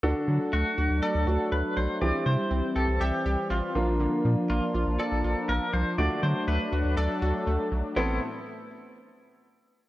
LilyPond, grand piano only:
\new Staff \with { instrumentName = "Grand piano" } { \time 4/4 \key d \mixolydian \tempo 4 = 121 <d' fis' a'>2~ <d' fis' a'>8 <d' fis' a'>4. | <c' e' g'>2.~ <c' e' g'>8 <bes d' f'>8~ | <bes d' f'>2.~ <bes d' f'>8 r8 | <a d' fis'>1 |
<b c' a'>8 r2. r8 | }